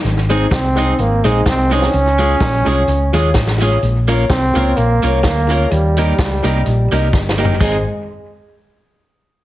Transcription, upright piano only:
X:1
M:4/4
L:1/8
Q:"Swing" 1/4=127
K:Ab
V:1 name="Upright piano"
z [EAc] z [EAc] z [EAc] z [EAc] | z [FAd] z [FAd] [Ad] [FAd] z [FAd] | z [FBd] z [FBd] [Bd] [FBd] z [FBd] | z [GBe] z [GBe] [Be] [GBe] z [GBe] |
[Ace] z6 z |]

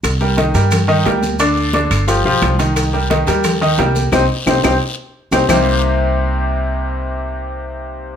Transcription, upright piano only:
X:1
M:4/4
L:1/8
Q:1/4=176
K:Cm
V:1 name="Upright piano"
z [G,GB] [E,Ee] [G,GB]2 [E,Ee] [G,GB]2 | [D,Dd]2 [D,Dd]2 [F,FG] [F,FG]2 [E,Ee]- | [E,Ee] [G,GB] [E,Ee] [G,GB]2 [E,Ee] [G,GB]2 | [CEG] z [CEG] [CEG] z3 [CEG] |
[C,G,B,CEG]8- | [C,G,B,CEG]8 |]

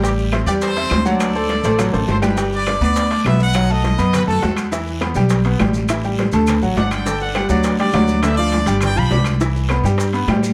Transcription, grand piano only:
X:1
M:4/4
L:1/8
Q:1/4=205
K:G
V:1 name="Grand piano"
[G,Gg]2 [Cce] [G,Gg]2 [Cce]2 [F,Ff]- | [F,Ff] [A,Ac]2 [A,Ac] [F,Ff] [A,Ac]2 [G,Gg] | [G,Gg]2 [Ddd'] [B,Bb]2 [Ddd'] [B,Bb]2 | [F,Ff] [A,Aa]2 [B,Bb]2 [A,Aa] [Fff']2 |
[E,Ee]2 [B,Bb] [G,Gg]2 [B,Bb] [G,Gg]2 | [E,Ee] [G,Gg]2 [A,Aa]2 [F,Ff] [Ddd']2 | [D,Dd]2 [G,Gg] [F,Ff]2 [G,Gg] [F,Ff]2 | [D,Dd] [=F,=F=f]2 [G,Gg]2 [F,Ff] [Ddd']2 |
[E,Ee]2 [B,Bb] [G,Gg]2 [B,Bb] [G,Gg]2 |]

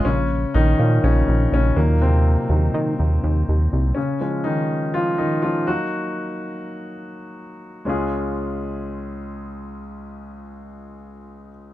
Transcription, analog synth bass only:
X:1
M:4/4
L:1/8
Q:1/4=123
K:Db
V:1 name="Analog synth bass" clef=bass
B,,,2 B,,, B,, B,,, B,,, B,,, E,,- | E,,2 E,, E, E,, E,, E,, C,, | z8 | z8 |
z8 | z8 |]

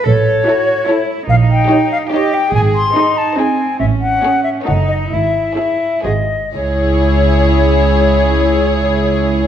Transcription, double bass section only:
X:1
M:3/4
L:1/8
Q:1/4=139
K:C#m
V:1 name="Double bass section" clef=bass
A,,,2 z4 | ^A,,,2 z4 | G,,,2 z4 | A,,,2 z2 F,,,2 |
G,,,2 z2 G,,,2 | C,,6- | C,,6 |]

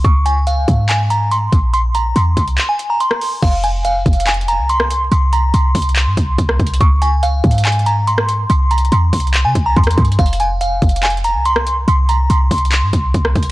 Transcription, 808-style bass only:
X:1
M:4/4
L:1/16
Q:1/4=142
K:Fm
V:1 name="808-style bass" clef=bass
D,,6 A,,8 B,,,2- | B,,,4 =E,,2 C,,2 z8 | F,,,6 F,,,4- F,,, C,,4- C,, | C,,4 C,,2 C,,3 G,, C,,2 C,,2 C,,2 |
D,,6 A,,8- A,,2 | C,,4 =E,,2 C,,3 C, C,,2 E,,2 G,,2 | F,,,6 F,,,4- F,,, C,,4- C,, | C,,4 C,,2 C,,3 G,, C,,2 C,,2 C,,2 |]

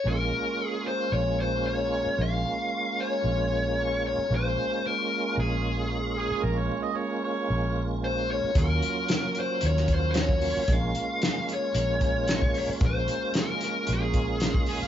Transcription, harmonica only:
X:1
M:4/4
L:1/16
Q:1/4=113
K:Bbm
V:1 name="Harmonica"
z16 | z16 | z12 z2 A2 | B d2 e d2 d4- d z4 z |
z16 | z16 | z12 z2 a f |]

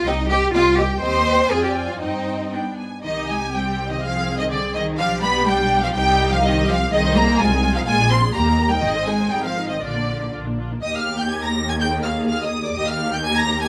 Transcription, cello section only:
X:1
M:2/4
L:1/16
Q:1/4=124
K:Cm
V:1 name="Cello section" clef=bass
E2 G2 F2 G2 | c4 A G2 F | E4 z4 | E,2 A,2 G,3 E, |
F,3 E, D,2 E,2 | F,2 =B,2 G,3 F, | G,3 F, E,2 F,2 | [K:Eb] E,2 B,2 A,3 F, |
A,2 C2 B,3 G, | E,2 A,2 G, F,2 E, | D,4 z4 | E,,8- |
E,,8 | E,,8 |]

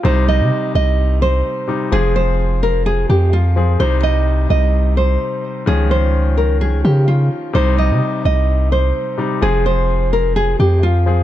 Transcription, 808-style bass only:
X:1
M:4/4
L:1/16
Q:1/4=128
K:Cphr
V:1 name="808-style bass" clef=bass
C,,3 C, z2 C,,6 z4 | F,,,8- F,,,2 F,,6 | C,,6 C,,6 z4 | D,,8 C,, D,, D,4 z2 |
C,,3 C, z2 C,,6 z4 | F,,,8- F,,,2 F,,6 |]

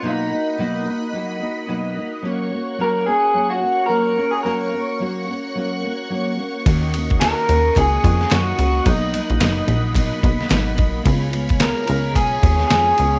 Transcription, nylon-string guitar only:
X:1
M:4/4
L:1/8
Q:"Swing 16ths" 1/4=109
K:F#
V:1 name="Nylon-string guitar"
[B,,F,A,DF] [A,DF] [B,,F,A,DF] [A,DF] [F,A,DF] [A,DF] [B,,F,A,DF] [A,DF] | [F,A,CF] [A,CF] [F,A,CF] [A,CF] [F,A,CF] [A,CF] [F,A,CF] [A,CF] | [F,A,CF] [A,CF] [F,A,CF] [A,CF] [F,A,CF] [A,CF] [F,A,CF] [A,CF] | [D,A,CF] [A,CF] [D,A,CF] [A,CF] [D,A,CF] [A,CF] [D,A,CF] [A,CF] |
[B,,F,A,D] [F,A,D] [B,,F,A,D] [F,A,D] [B,,F,A,D] [F,A,D] [B,,F,A,D] [F,A,D] | [C,G,B,E] [G,B,E] [C,G,B,E] [G,B,E] [C,G,B,E] [G,B,E] [C,G,B,E] [G,B,E] |]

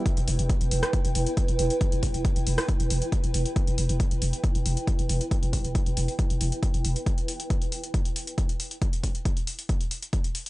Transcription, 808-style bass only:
X:1
M:4/4
L:1/16
Q:1/4=137
K:Em
V:1 name="808-style bass" clef=bass
z E,,, E,,, E,,, z E,,, E,,, z2 E,,, E,,, z2 E,,, E,,, z | z E,,, E,,, E,,, z E,,, E,,, z2 E,,, E,,, z2 E,,, E,,, z | z E,,, E,,, E,,, z E,,, E,,, z2 E,,, E,,, z2 E,,, E,,, z | z E,,, E,,, E,,, z E,,, E,,, z2 E,,, E,,, z2 E,,, E,,, z |
z16 | z16 |]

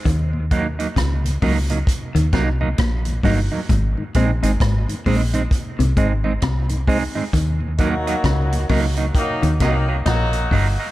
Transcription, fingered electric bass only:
X:1
M:4/4
L:1/16
Q:"Swing 16ths" 1/4=66
K:Ebdor
V:1 name="Fingered electric bass" clef=bass
E,,4 D,,2 D,,2 z E,, C,,2 B,,,2 =G,,, z | A,,, z B,,, A,,, A,,, z B,,,2 z C,, A,,,2 C,,3 z | E,,4 D,,2 D,,2 z E,, C,,2 B,,,2 =G,,, z |]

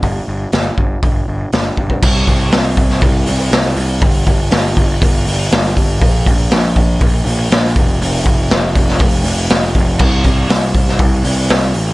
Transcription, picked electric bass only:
X:1
M:4/4
L:1/8
Q:1/4=120
K:Gm
V:1 name="Picked electric bass" clef=bass
G,,, G,,, G,,, G,,, G,,, G,,, G,,, G,,, | C,, C,, C,,2 C,, C,, C,, C,, | G,,, G,,, G,,, G,,, G,,, G,,, G,,, G,,, | B,,, B,,, B,,,2 B,,, B,,, B,,, F,,, |
F,,, F,,, F,,, F,,, F,,, F,,, F,,, F,,, | C,, C,, C,,2 C,, C,, C,, A,,, |]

